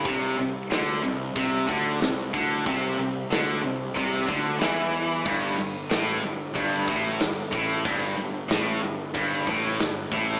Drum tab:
CC |----------------|----------------|x---------------|----------------|
HH |x-x-x-x-x-x-x-x-|x-x-x-x-x-x-x-x-|--x-x-x-x-x-x-x-|x-x-x-x-x-x-x-x-|
SD |----o----o--o---|----o----o--o---|----o-------o---|----o----o--o---|
BD |o-------o-o---o-|o-------o-o-----|o-------o-o---o-|o-------o-o---o-|